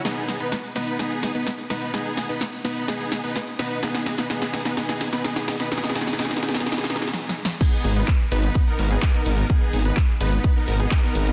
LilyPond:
<<
  \new Staff \with { instrumentName = "Supersaw synth" } { \time 4/4 \key gis \minor \tempo 4 = 127 <b dis' gis'>8. <b dis' b'>16 r8 <b dis' b'>8 <b dis' gis'>8. <b dis' b'>16 r8 <b dis' b'>8 | <b dis' gis'>8. <b dis' b'>16 r8 <b dis' b'>8 <b dis' gis'>8. <b dis' b'>16 r8 <b dis' b'>8 | <b dis' gis'>8. <b dis' b'>16 <b dis' gis'>8. <b dis' b'>16 <b dis' gis'>8. <b dis' b'>16 <b dis' gis'>8. <b dis' b'>16 | <b dis' gis'>8 <b dis' gis'>8 <b dis' gis'>8 <b dis' gis'>8 <b dis' gis'>8 <b dis' gis'>8 r4 |
<b dis' gis'>8. <b dis' b'>16 r8 <b dis' b'>8. <b dis' ais'>8 <b dis' gis'>8 <b dis' ais'>8. | <b dis' gis'>8. <b dis' b'>16 r8 <b dis' b'>8. <b dis' ais'>8 <b dis' gis'>8 <b dis' ais'>8. | }
  \new Staff \with { instrumentName = "Detuned saw bass" } { \clef bass \time 4/4 \key gis \minor r1 | r1 | r1 | r1 |
r8 gis,,8 r8 gis,,8 r8 gis,,8 r8 gis,,8 | r8 gis,,8 r8 gis,,8 r8 gis,,8 r8 gis,,8 | }
  \new DrumStaff \with { instrumentName = "Drums" } \drummode { \time 4/4 <hh sn>16 hh16 <hho sn>16 hh16 <hh sn>16 hh16 <hho sn>16 hh16 <hh sn>16 hh16 <hho sn>16 hh16 <hh sn>16 hh16 <hho sn>16 hh16 | <hh sn>16 hh16 <hho sn>16 hh16 <hh sn>16 hh16 <hho sn>16 hh16 <hh sn>16 hh16 <hho sn>16 hh16 <hh sn>16 hh16 <hho sn>16 hh16 | <hh sn>16 <hh sn>16 <hho sn>16 <hh sn>16 <hh sn>16 <hh sn>16 <hho sn>16 <hh sn>16 <hh sn>16 <hh sn>16 <hho sn>16 <hh sn>16 <hh sn>16 <hh sn>16 <hho sn>16 sn16 | <hh sn>32 sn32 <hh sn>32 sn32 <hho sn>32 sn32 <hh sn>32 sn32 <hh sn>32 sn32 <hh sn>32 sn32 <hho sn>32 sn32 <hh sn>32 sn32 <hh sn>32 sn32 <hh sn>32 sn32 <hho sn>32 sn32 <hh sn>32 sn32 \tuplet 3/2 { sn8 sn8 sn8 } |
<cymc hh bd>16 hh16 <hho cymr>16 hh16 <hc hh bd>16 hh16 <hho cymr>16 hh16 <hh bd>16 hh16 <hho cymr>16 hh16 <hc hh bd>16 hh16 <hho cymr>16 hh16 | <hh bd>16 hh16 <hho cymr>16 hh16 <hc hh bd>16 hh16 <hho cymr>16 hh16 <hh bd>16 hh16 <hho cymr>16 hh16 <hc hh bd>16 hh16 <hho cymr>16 hh16 | }
>>